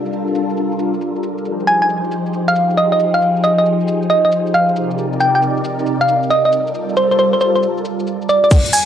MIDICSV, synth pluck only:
0, 0, Header, 1, 2, 480
1, 0, Start_track
1, 0, Tempo, 441176
1, 1581, Time_signature, 4, 2, 24, 8
1, 9632, End_track
2, 0, Start_track
2, 0, Title_t, "Synth pluck"
2, 0, Program_c, 0, 84
2, 1820, Note_on_c, 0, 80, 86
2, 1923, Note_off_c, 0, 80, 0
2, 1980, Note_on_c, 0, 80, 69
2, 2031, Note_off_c, 0, 80, 0
2, 2699, Note_on_c, 0, 77, 89
2, 2857, Note_off_c, 0, 77, 0
2, 3019, Note_on_c, 0, 75, 84
2, 3122, Note_off_c, 0, 75, 0
2, 3178, Note_on_c, 0, 75, 72
2, 3231, Note_off_c, 0, 75, 0
2, 3418, Note_on_c, 0, 77, 88
2, 3576, Note_off_c, 0, 77, 0
2, 3739, Note_on_c, 0, 75, 86
2, 3842, Note_off_c, 0, 75, 0
2, 3900, Note_on_c, 0, 75, 70
2, 3951, Note_off_c, 0, 75, 0
2, 4459, Note_on_c, 0, 75, 85
2, 4562, Note_off_c, 0, 75, 0
2, 4621, Note_on_c, 0, 75, 73
2, 4672, Note_off_c, 0, 75, 0
2, 4942, Note_on_c, 0, 77, 86
2, 5245, Note_off_c, 0, 77, 0
2, 5663, Note_on_c, 0, 79, 87
2, 5764, Note_off_c, 0, 79, 0
2, 5822, Note_on_c, 0, 79, 72
2, 5872, Note_off_c, 0, 79, 0
2, 6539, Note_on_c, 0, 77, 89
2, 6697, Note_off_c, 0, 77, 0
2, 6859, Note_on_c, 0, 75, 89
2, 6962, Note_off_c, 0, 75, 0
2, 7021, Note_on_c, 0, 75, 71
2, 7072, Note_off_c, 0, 75, 0
2, 7582, Note_on_c, 0, 72, 84
2, 7683, Note_off_c, 0, 72, 0
2, 7739, Note_on_c, 0, 72, 70
2, 7791, Note_off_c, 0, 72, 0
2, 7820, Note_on_c, 0, 72, 85
2, 7923, Note_off_c, 0, 72, 0
2, 7977, Note_on_c, 0, 72, 77
2, 8030, Note_off_c, 0, 72, 0
2, 8061, Note_on_c, 0, 72, 83
2, 8163, Note_off_c, 0, 72, 0
2, 8219, Note_on_c, 0, 72, 72
2, 8271, Note_off_c, 0, 72, 0
2, 9022, Note_on_c, 0, 74, 86
2, 9124, Note_off_c, 0, 74, 0
2, 9181, Note_on_c, 0, 74, 75
2, 9232, Note_off_c, 0, 74, 0
2, 9499, Note_on_c, 0, 80, 90
2, 9602, Note_off_c, 0, 80, 0
2, 9632, End_track
0, 0, End_of_file